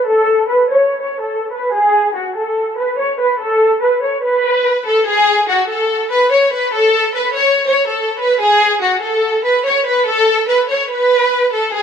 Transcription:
0.07 A4
0.49 B4
0.70 C#5
1.02 C#5
1.23 A4
1.53 B4
1.74 G#4
2.16 F#4
2.37 A4
2.78 B4
2.99 C#5
3.20 B4
3.41 A4
3.82 B4
4.03 C#5
4.24 B4
4.87 A4
5.07 G#4
5.49 F#4
5.70 A4
6.12 B4
6.33 C#5
6.53 B4
6.74 A4
7.16 B4
7.37 C#5
7.68 C#5
7.89 A4
8.20 B4
8.41 G#4
8.82 F#4
9.03 A4
9.45 B4
9.66 C#5
9.87 B4
10.08 A4
10.49 B4
10.70 C#5
10.91 B4
11.53 A4
11.74 G#4

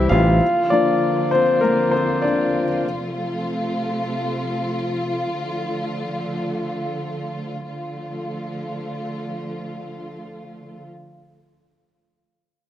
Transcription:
Already playing: C3 E3 G3 C4 E4 G4 C5 E5
0.09 A1 F4 F5
0.41 D3 F3 A#3 F4
0.70 F3 A#3 D4 D5
1.31 C4 C5
1.61 A#3 A#4
1.91 C4 C5
2.22 D4 D5
2.84 C3 A3
5.26 D3 A3
7.68 D3 F3 A3 F4

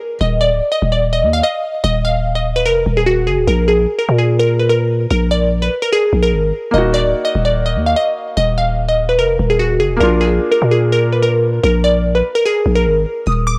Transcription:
Already playing: A#3 D4 F4 A#4
0.21 D#1 D#5
0.41 D5
0.52 D1
0.72 D#5
0.82 D#1
0.92 D5
1.13 D#5
1.23 D#2
1.33 F5
1.43 D#5
1.84 D#1 D#5
2.05 F5
2.35 D#5
2.56 B4
2.66 F1 A#4
2.86 D#1
2.97 G#4
3.06 F#4
3.27 F#1 G#4
3.37 D#1
3.47 A#1 A#4
3.68 G#4
3.99 A#4
4.09 A#2
4.18 G#4
4.39 A#4
4.60 B4
4.69 A#4
5.10 A#1 A#4
5.31 D5
5.62 B4
5.82 A#4
5.93 G#4
6.13 A#1
6.23 A#4
6.33 G#1
6.71 D#1 A#3 D#4 D#5
6.78 F#4
6.94 D5
7.05 D1
7.25 D#5
7.35 D#1
7.45 D5
7.66 D#5
7.76 D#2
7.86 F5
7.96 D#5
8.37 D#1 D#5
8.58 F5
8.89 D#5
9.09 B4
9.19 F1 A#4
9.39 D#1
9.50 G#4
9.59 F#4
9.80 F#1 G#4
9.90 D#1
9.97 A#3 D4 A#4
10.01 A#1 F4
10.21 G#4
10.52 A#4
10.62 A#2
10.71 G#4
10.92 A#4
11.13 B4
11.22 A#4
11.63 A#1 A#4
11.84 D5
12.15 B4
12.35 A#4
12.45 G#4
12.66 A#1
12.75 A#4
12.86 G#1
13.27 D#1 D#6
13.47 D6

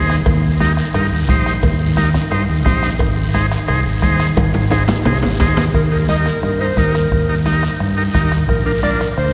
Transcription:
Already playing: D#2 D#4 G#4 C5
0.10 bombo rim, short guiro
0.26 D#2, bombo low, bombo rim, cowbell, high conga, long guiro
0.60 D#4 G4 A#4, bombo rim, high conga, short guiro
0.77 bombo rim, short guiro
0.94 G2 D#4 G4 A#4, bombo rim, cowbell, high conga, long guiro
1.12 D#2
1.29 A#1 D#4 G4 C5, bombo low, bombo rim, high conga, short guiro
1.46 bombo rim, short guiro
1.63 D#2, bombo low, bombo rim, cowbell, high conga, long guiro
1.97 D#4 G4 A#4, bombo rim, high conga, short guiro
2.14 bombo rim, low conga, short guiro
2.31 G2 D#4 G4 C5, bombo rim, cowbell, high conga, long guiro
2.49 D#2
2.64 A#1 D#4 G4 C5, bombo low, bombo rim, high conga, low conga, short guiro
2.83 bombo rim, short guiro
2.99 G#1, bombo low, bombo rim, cowbell, high conga, long guiro
3.34 D#4 G#4 C5, bombo rim, high conga, short guiro
3.51 bombo rim, short guiro
3.68 C2 D#4 G#4 C5, bombo rim, cowbell, high conga, long guiro
3.86 G#1
4.02 D#2 D#4 G#4 C5, bombo low, bombo rim, high conga, short guiro
4.20 bombo rim, short guiro
4.37 G#1, bombo low, bombo rim, cowbell, high conga, high timbale, long guiro
4.54 high conga, high timbale
4.70 D#4 G#4 C5, bombo rim, low conga, high timbale, short guiro
4.88 bombo rim, high conga, low timbale, short guiro
5.05 C2 D#4 G#4 C5, bombo rim, cowbell, low conga, low timbale, long guiro
5.23 G#1, low conga, low timbale
5.40 D#2 D#4 G#4 C5, bombo low, bombo rim, low timbale, short guiro
5.57 bombo rim, low conga, low timbale, short guiro
5.74 D#2 A#4, bombo low, bombo rim, high conga, long guiro
5.91 D#4 G4 A#4
6.09 D#4 G4 A#4 D#5, bombo rim, high conga, short guiro
6.26 A#4, bombo rim, short guiro
6.43 G2 A#4, bombo rim, high conga, long guiro
6.60 D#4 G4 A#4 C5
6.77 D#2 D#4 G4 A#4, bombo low, bombo rim, high conga, short guiro
6.94 A#4, bombo rim, short guiro
7.11 D#2, bombo low, bombo rim, high conga, long guiro
7.29 D#4 G4 A#4
7.45 D#4 G4 A#4, bombo rim, high conga, short guiro
7.63 bombo rim, short guiro
7.80 G2, bombo rim, high conga, long guiro
7.97 D#4 G4 A#4
8.14 D#2 D#4 G4 A#4, bombo low, bombo rim, high conga, short guiro
8.31 bombo rim, short guiro
8.48 A#1 A#4, bombo low, bombo rim, high conga, long guiro
8.66 D4 F4 A#4
8.83 D4 F4 A#4 D5, bombo rim, high conga, short guiro
9.00 A#4, bombo rim, short guiro
9.18 D2 C5, bombo rim, high conga, long guiro

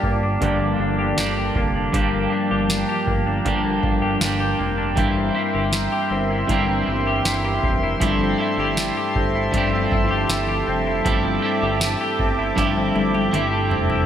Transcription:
Already playing: G2 F3 A#3 D4 G4 A#4 D5 A5 D6
0.03 G1 A#3, kick
0.23 D4
0.41 G1 G2 D3 F3 A#3 D4 G4, kick, closed hi-hat
0.60 A#3
0.80 G1 D4
0.99 G4
1.17 G1 F3 A#3 D4 G4, snare, closed hi-hat
1.37 G4
1.55 F1 A#3, kick
1.75 D4
1.93 G1 G2 D3 F3 A#3 D4 G4 G5, kick, closed hi-hat
2.14 A#3
2.30 A#3 D4 G4
2.34 F3
2.51 G1 G4
2.69 D4, snare, closed hi-hat
2.89 G4
3.07 G1 A#3, kick
3.26 D4
3.45 G1 G2 D3 F3 A#3 D4 G4, kick, closed hi-hat
3.65 A#3
3.83 G1 D4, kick
4.02 G4
4.21 G1 F3 A#3 D4 G4, snare, closed hi-hat
4.40 G4
4.59 F1 A#3
4.78 D4
4.96 G1 G2 E3 A#3 C4 E4 G4 E5 C6, kick, closed hi-hat
5.16 C4
5.35 A#3 C4 E4 G4
5.55 G1 G4
5.73 E4, snare, closed hi-hat
5.92 G4
6.11 G1 C4
6.30 E4
6.47 G1 G2 E3 A#3, kick, closed hi-hat
6.52 C4 E4 G4
6.68 C4
6.87 G1 E4
7.07 G4
7.25 G1 E4, snare, closed hi-hat
7.45 G4
7.63 F1 C4, kick
7.83 E4
8.00 G1 G2 F3 A3 C4 E4 G4 A4 E5 A5, kick, closed hi-hat
8.21 C4
8.38 C4 E4 G4
8.43 A3
8.58 G1 G4
8.77 E4, snare, closed hi-hat
8.97 G4
9.15 G1 C4, kick
9.35 E4
9.52 G1 G2 F3 A3, kick, closed hi-hat
9.56 C4 E4 G4
9.73 C4
9.92 G1 E4, kick
10.11 G4
10.29 G1 E4, snare, closed hi-hat
10.48 G4
10.67 F1 C4
10.87 E4
11.04 G1 G2 F3 A3 C4 E4 G4 D6, kick, closed hi-hat
11.25 C4
11.42 A3 C4 E4 G4
11.63 G1 G4
11.81 E4, snare, closed hi-hat
12.01 G4
12.19 G1 C4, kick
12.39 E4
12.56 G1 G2 F3 A3 C4 E4 G4, kick, snare, closed hi-hat
12.77 C4
12.95 G1 E4, high tom
13.14 G4, high tom
13.31 G1 A3 C4 E4 G4, closed hi-hat, mid tom
13.53 G4
13.71 F1 C4, floor tom
13.90 E4, floor tom

